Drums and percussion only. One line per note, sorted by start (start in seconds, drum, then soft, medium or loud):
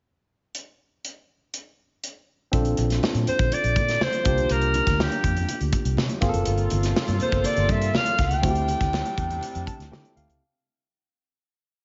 0.55 closed hi-hat medium
1.05 closed hi-hat medium
1.54 closed hi-hat medium
2.04 closed hi-hat medium
2.53 kick medium
2.53 closed hi-hat medium
2.53 muted conga soft
2.65 closed hi-hat soft
2.77 closed hi-hat medium
2.77 muted conga medium
2.90 snare soft
2.90 closed hi-hat medium
3.03 snare loud
3.03 high conga medium
3.15 closed hi-hat medium
3.27 closed hi-hat medium
3.27 low conga medium
3.39 kick loud
3.39 closed hi-hat soft
3.52 closed hi-hat loud
3.52 muted conga soft
3.64 closed hi-hat soft
3.76 kick medium
3.76 closed hi-hat medium
3.88 snare soft
3.88 closed hi-hat medium
4.01 snare loud
4.01 high conga medium
4.12 closed hi-hat medium
4.25 kick loud
4.25 closed hi-hat medium
4.37 closed hi-hat medium
4.37 high conga medium
4.49 closed hi-hat medium
4.49 muted conga soft
4.61 closed hi-hat soft
4.74 closed hi-hat medium
4.74 muted conga medium
4.87 kick medium
4.87 snare soft
4.87 closed hi-hat medium
5.00 snare loud
5.00 high conga medium
5.12 closed hi-hat soft
5.24 kick medium
5.24 closed hi-hat medium
5.37 closed hi-hat medium
5.37 low conga medium
5.49 closed hi-hat medium
5.49 muted conga soft
5.61 closed hi-hat soft
5.73 kick medium
5.73 closed hi-hat medium
5.73 muted conga soft
5.85 closed hi-hat medium
5.97 snare loud
5.97 high conga medium
6.09 closed hi-hat soft
6.22 kick loud
6.22 snare soft
6.22 closed hi-hat medium
6.34 closed hi-hat medium
6.34 high conga medium
6.45 closed hi-hat medium
6.45 muted conga soft
6.58 closed hi-hat soft
6.70 closed hi-hat medium
6.70 muted conga medium
6.83 snare soft
6.83 closed hi-hat medium
6.96 snare loud
6.96 high conga medium
7.08 closed hi-hat soft
7.20 closed hi-hat medium
7.20 low conga medium
7.32 kick loud
7.32 closed hi-hat soft
7.44 closed hi-hat loud
7.44 muted conga soft
7.57 closed hi-hat medium
7.69 kick medium
7.69 closed hi-hat medium
7.69 muted conga soft
7.82 closed hi-hat medium
7.94 snare loud
7.94 high conga medium
8.06 closed hi-hat medium
8.18 kick medium
8.18 snare soft
8.18 closed hi-hat medium
8.31 closed hi-hat medium
8.31 high conga medium
8.43 kick loud
8.43 closed hi-hat loud
8.43 muted conga soft
8.55 closed hi-hat soft
8.68 closed hi-hat medium
8.68 muted conga medium
8.81 kick medium
8.81 snare soft
8.81 closed hi-hat medium
8.93 snare loud
8.93 high conga medium
9.06 closed hi-hat soft
9.18 kick medium
9.18 closed hi-hat medium
9.30 closed hi-hat soft
9.30 low conga medium
9.41 closed hi-hat medium
9.41 muted conga soft
9.55 closed hi-hat soft
9.66 kick medium
9.66 closed hi-hat medium
9.66 muted conga soft
9.80 snare soft
9.80 closed hi-hat medium
9.91 snare loud
9.91 high conga medium
10.05 closed hi-hat soft
10.17 closed hi-hat medium
10.28 closed hi-hat medium
10.28 high conga medium